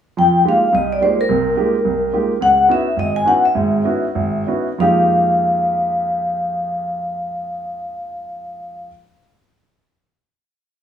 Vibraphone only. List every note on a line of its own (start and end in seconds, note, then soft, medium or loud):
0.19 0.47 G5 medium
0.49 0.73 F5 medium
0.75 0.91 D#5 medium
0.92 1.02 D5 medium
1.03 1.17 C5 medium
1.21 2.27 A#4 medium
2.42 2.68 F#5 loud
2.72 2.99 E5 medium
2.99 3.14 D#5 medium
3.16 3.27 G#5 medium
3.28 3.35 F#5 medium
3.45 4.63 E5 medium
4.80 8.84 F5 medium